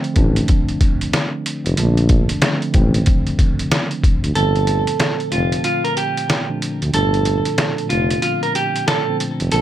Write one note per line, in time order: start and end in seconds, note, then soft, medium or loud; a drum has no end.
0.00 0.14 D3 medium
0.00 0.15 F3 medium
0.00 0.16 A3 medium
0.00 2.45 C4 medium
0.00 closed hi-hat soft
0.14 0.42 A1 medium
0.14 1.03 D3 medium
0.14 1.03 F3 medium
0.14 1.04 A3 medium
0.14 1.04 D4 medium
0.14 kick medium
0.14 closed hi-hat medium
0.36 closed hi-hat medium
0.48 kick medium
0.48 closed hi-hat medium
0.69 closed hi-hat soft
0.81 kick medium
0.81 closed hi-hat medium
1.01 closed hi-hat soft
1.13 snare medium
1.13 closed hi-hat medium
1.46 closed hi-hat medium
1.65 1.75 F1 medium
1.65 closed hi-hat soft
1.76 2.29 A#1 loud
1.76 2.21 D3 medium
1.76 2.22 F3 medium
1.76 2.22 A3 medium
1.76 2.23 D4 medium
1.76 closed hi-hat loud
1.97 closed hi-hat soft
2.09 kick medium
2.09 closed hi-hat medium
2.29 closed hi-hat medium
2.41 2.65 D3 medium
2.41 2.66 F3 medium
2.41 2.67 A3 medium
2.41 2.67 C4 medium
2.41 snare loud
2.41 closed hi-hat medium
2.62 closed hi-hat soft
2.71 3.00 A1 medium
2.71 2.81 C#3 medium
2.71 3.61 F3 medium
2.71 3.61 A3 medium
2.71 3.62 C4 medium
2.71 kick medium
2.71 closed hi-hat medium
2.78 3.64 D3 medium
2.94 closed hi-hat medium
3.06 kick medium
3.06 closed hi-hat medium
3.27 closed hi-hat soft
3.39 kick medium
3.39 closed hi-hat medium
3.59 closed hi-hat medium
3.71 snare loud
3.71 closed hi-hat medium
3.91 closed hi-hat soft
4.04 kick medium
4.04 closed hi-hat medium
4.24 4.33 D2 medium
4.24 closed hi-hat soft
4.34 4.87 G1 loud
4.34 4.98 A#2 medium
4.34 4.99 D3 medium
4.34 4.99 F3 medium
4.34 5.00 A3 medium
4.34 5.00 C4 medium
4.34 5.28 A4 loud
4.34 closed hi-hat loud
4.56 closed hi-hat soft
4.67 closed hi-hat medium
4.87 closed hi-hat medium
5.00 snare loud
5.00 closed hi-hat medium
5.20 closed hi-hat soft
5.30 5.58 F1 medium
5.30 6.08 A#2 medium
5.30 6.08 D3 medium
5.30 6.08 F3 medium
5.30 6.09 A3 medium
5.30 6.09 C4 medium
5.30 5.61 F4 medium
5.30 closed hi-hat medium
5.52 closed hi-hat medium
5.64 5.83 F4 medium
5.64 closed hi-hat medium
5.84 5.96 A#4 medium
5.84 closed hi-hat soft
5.97 6.46 G4 medium
5.97 closed hi-hat medium
6.17 closed hi-hat medium
6.30 snare loud
6.30 closed hi-hat medium
6.47 6.80 A#2 medium
6.47 6.80 D3 medium
6.47 6.81 F3 medium
6.47 6.81 A3 medium
6.47 6.81 D4 medium
6.62 closed hi-hat medium
6.82 6.91 D2 medium
6.82 closed hi-hat soft
6.92 7.45 G1 loud
6.92 7.01 A2 medium
6.92 7.57 D3 medium
6.92 7.57 F3 medium
6.92 7.58 A3 medium
6.92 7.58 D4 medium
6.92 7.87 A4 loud
6.92 closed hi-hat loud
6.99 7.60 A#2 medium
7.14 closed hi-hat soft
7.25 closed hi-hat medium
7.45 closed hi-hat medium
7.58 snare loud
7.58 closed hi-hat medium
7.78 closed hi-hat soft
7.86 8.64 A#2 medium
7.86 8.65 D3 medium
7.86 8.65 F3 medium
7.86 8.66 A3 medium
7.86 7.98 B3 medium
7.86 8.19 F4 medium
7.86 closed hi-hat medium
7.91 8.16 F1 medium
7.96 8.69 C4 medium
8.11 closed hi-hat medium
8.22 8.40 F4 medium
8.22 closed hi-hat medium
8.43 8.54 A#4 medium
8.43 closed hi-hat soft
8.55 8.84 G4 medium
8.55 closed hi-hat medium
8.76 closed hi-hat medium
8.88 9.16 A4 medium
8.88 snare loud
8.88 closed hi-hat medium
9.06 9.38 A#2 medium
9.06 9.39 D3 medium
9.06 9.39 F3 medium
9.06 9.39 A3 medium
9.06 9.40 C4 medium
9.20 closed hi-hat medium
9.40 9.49 F1 medium
9.40 closed hi-hat soft
9.51 9.61 A#1 loud
9.51 9.61 D3 medium
9.51 9.61 F3 medium
9.51 9.61 A3 medium
9.51 9.61 C4 medium
9.51 9.61 A4 loud
9.51 closed hi-hat loud